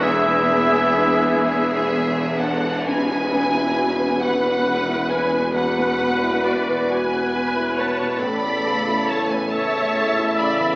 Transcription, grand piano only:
\new Staff \with { instrumentName = "Grand piano" } { \time 6/8 \key e \mixolydian \tempo 4. = 45 <e, d'>8 b8 d'8 b'8 gis'8 d'8 | e,16 b,16 b16 e'16 fis'16 b'16 fis'16 b'16 fis'16 e'16 b16 b,16 | e,16 b16 b,16 e'16 fis'16 b'16 fis'16 b'16 fis'16 e'16 b16 b,16 | a,,16 e,16 cis16 e'16 a'16 cis''16 a'16 cis''16 a'16 e'16 cis16 e,16 | }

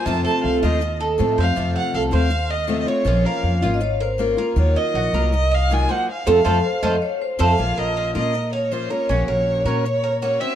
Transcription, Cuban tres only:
\new Staff \with { instrumentName = "Cuban tres" } { \time 4/4 \key bes \minor \tempo 4 = 159 f'8 a'4 f'4 a'4 c''8~ | c''8 f''8 a'8 c''4 f''4 des''8 | f'8 bes'4 f'4 bes'4 bes'8~ | bes'8 ees''8 ges'8 bes'4 ees''4 c''8 |
r8 <f' a' c''>8 <f' a' c''>8 r8 <f' a' c''>8 r4 <f' a' c''>8 | r8 bes'8 f'8 bes'4 f''4 bes'8 | des'8 bes'4 des''4 bes'8 ges'8 c'8 | }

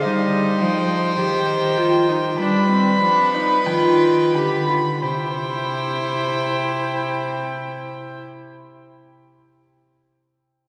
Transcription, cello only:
\new Staff \with { instrumentName = "Cello" } { \clef bass \time 4/4 \key c \minor \tempo 4 = 42 g8 f8 ees4 g8 f8 ees8 d8 | c1 | }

